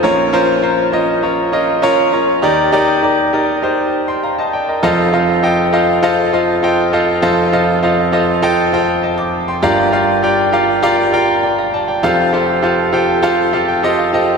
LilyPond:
<<
  \new Staff \with { instrumentName = "Grand piano" } { \time 4/4 \key f \mixolydian \tempo 4 = 100 << { r1 | r2 r8. <g'' c'''>16 <f'' bes''>16 <ees'' a''>16 <d'' g''>16 <bes' ees''>16~ | <bes' ees''>16 r2. r8. | r2. <ees'' a''>16 <a'' d'''>8 <g'' c'''>16~ |
<g'' c'''>16 r2 r8. <d'' g''>16 <f'' bes''>16 <d'' a''>16 <d'' g''>16~ | <d'' g''>16 r2 r16 a''16 g''16 f''16 f''8. | } \\ { <des' f' bes' des''>8 <des' f' bes' c''>8 <des' f' bes' c''>8 <des' f' bes' ees''>8 <des' f' bes' des''>8 <des' f' bes' ees''>8 <des' f' bes' des''>8 <des' f' bes' des''>8 | <ees' g' bes' d''>8 <ees' g' bes' d''>8 <ees' g' bes' d''>8 <ees' g' bes' d''>8 <ees' g' bes' c''>8 r4. | <f' a' c'' ees'' f''>8 <f' a' c'' ees'' f''>8 <f' a' c'' ees'' g''>8 <f' a' c'' ees'' f''>8 <f' a' c'' ees'' f''>8 <f' a' c'' ees'' f''>8 <f' a' c'' ees'' g''>8 <f' a' c'' ees'' f''>8 | <f' a' c'' ees'' f''>8 <f' a' c'' ees'' f''>8 <f' a' c'' ees'' f''>8 <f' a' c'' ees'' f''>8 <f' a' c'' ees'' g''>8 <f' a' c'' ees'' g''>8 r4 |
<f' g' bes' d'' f''>8 <f' g' bes' d'' f''>8 <f' g' bes' d'' g''>8 <f' g' bes' d'' f''>8 <f' g' bes' d'' f''>8 <f' g' bes' d'' g''>8 r4 | <f' g' a' c'' f''>8 <f' g' a' c'' f''>8 <f' g' a' c'' f''>8 <f' g' a' c'' g''>8 <f' g' a' c'' f''>8 <f' g' a' c'' f''>8 <f' g' a' c'' ees''>8 <f' g' a' c'' ees''>8 | } >> }
  \new Staff \with { instrumentName = "Grand piano" } { \clef bass \time 4/4 \key f \mixolydian <bes,, bes,>1 | <ees, ees>1 | <f,, f,>1 | <f,, f,>1 |
<g,, g,>1 | <f,, f,>1 | }
>>